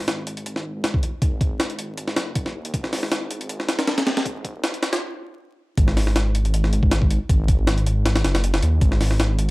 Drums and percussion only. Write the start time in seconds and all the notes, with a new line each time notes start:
0.08 snare, closed hi-hat
0.27 closed hi-hat
0.37 closed hi-hat
0.46 closed hi-hat
0.56 snare
0.84 snare, closed hi-hat
0.94 kick
1.03 closed hi-hat
1.22 kick, closed hi-hat
1.41 kick, closed hi-hat
1.60 snare, closed hi-hat
1.70 closed hi-hat
1.79 closed hi-hat
1.98 closed hi-hat
2.08 snare
2.16 snare, closed hi-hat
2.35 kick, closed hi-hat
2.46 snare
2.65 closed hi-hat
2.74 kick, closed hi-hat
2.84 snare
2.93 snare, open hi-hat
3.03 snare
3.12 snare, closed hi-hat
3.31 closed hi-hat
3.41 closed hi-hat
3.49 closed hi-hat
3.60 snare
3.69 snare, closed hi-hat
3.79 snare, closed hi-hat
3.87 snare, closed hi-hat
3.98 snare, closed hi-hat
4.07 snare, closed hi-hat
4.17 snare, closed hi-hat
4.26 kick, closed hi-hat
4.44 kick, closed hi-hat
4.64 snare, closed hi-hat
4.74 closed hi-hat
4.83 snare, closed hi-hat
4.93 snare, closed hi-hat
5.78 kick, closed hi-hat
5.88 snare
5.97 snare, open hi-hat
6.07 snare
6.16 snare, closed hi-hat
6.35 closed hi-hat
6.45 closed hi-hat
6.54 closed hi-hat
6.64 snare
6.73 closed hi-hat
6.83 kick
6.91 snare, closed hi-hat
7.02 kick
7.11 closed hi-hat
7.29 kick, closed hi-hat
7.48 kick, closed hi-hat
7.67 snare, closed hi-hat
7.78 closed hi-hat
7.86 closed hi-hat
8.05 snare, closed hi-hat
8.15 snare, closed hi-hat
8.24 snare, closed hi-hat
8.35 snare, closed hi-hat
8.44 closed hi-hat
8.54 snare
8.62 closed hi-hat
8.81 kick, closed hi-hat
8.92 snare
9.01 snare, open hi-hat
9.11 snare
9.20 snare, closed hi-hat
9.39 closed hi-hat